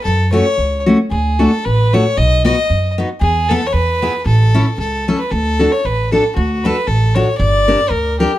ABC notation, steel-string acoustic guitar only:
X:1
M:2/4
L:1/8
Q:"Swing" 1/4=114
K:A
V:1 name="Steel-string acoustic guitar"
z [A,CF] z [A,CF] | z [A,DF] z [A,DF] | z [B,^DF] z [B,DF] | z [B,EA] z [B,EG] |
z [CEA] z [CEA] | [K:D] z [DFA] z [DFA] | z [DFA] z [DFA] | z [DG_B] z [DGB] |]